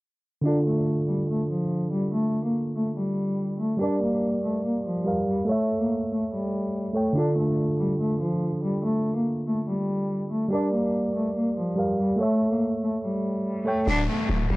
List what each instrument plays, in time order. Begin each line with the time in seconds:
0.41 tine electric piano D3 D4, cello D4
0.46 tine electric piano F4 A4
0.66 cello A3
1.08 cello G3
1.28 cello A3
1.50 cello F3
1.91 cello G3
2.12 cello A3
2.44 cello A#3
2.75 cello A3
2.96 cello G3
3.59 cello A3
3.77 tine electric piano G3 G4, cello D4
3.81 tine electric piano A#4 D5
4.01 cello A#3
4.43 cello A3
4.64 cello A#3
4.85 cello F3
5.04 tine electric piano G3 G4 A#4 F5
5.27 cello G3
5.45 tine electric piano A3 A4, cello A3
5.49 tine electric piano C#5 E5
5.80 cello A#3
6.11 cello A3
6.32 cello G3
6.93 tine electric piano A3 A4 C#5 G5, cello A3
7.13 tine electric piano D3 D4, cello D4
7.17 tine electric piano F4 A4
7.37 cello A3
7.79 cello G3
8.00 cello A3
8.21 cello F3
8.63 cello G3
8.84 cello A3
9.15 cello A#3
9.47 cello A3
9.68 cello G3
10.31 cello A3
10.48 tine electric piano G3 G4, cello D4
10.53 tine electric piano A#4 D5
10.73 cello A#3
11.15 cello A3
11.36 cello A#3
11.57 cello F3
11.76 tine electric piano G3 G4 A#4 F5
11.99 cello G3
12.16 tine electric piano A3 A4, cello A3
12.21 tine electric piano C#5 E5
12.51 cello A#3
12.82 cello A3
13.03 cello G3
13.65 tine electric piano A3 A4 C#5 G5, cello A3
13.87 808-style bass D1, cello D4, downlifter
14.08 cello A3
14.29 808-style bass D1
14.50 808-style bass D1, cello G3